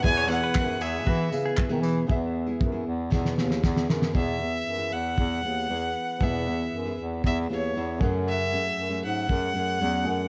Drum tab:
TB |--x---x---x---x-|----------------|----------------|----------------|
CP |----x-------x---|----------------|----------------|----------------|
SD |----------------|--------oooooooo|----------------|----------------|
BD |o---o---o---o---|o---o---o---o---|o-------o-------|o-------o-----o-|

TB |----------------|
CP |----------------|
SD |----------------|
BD |--------o-------|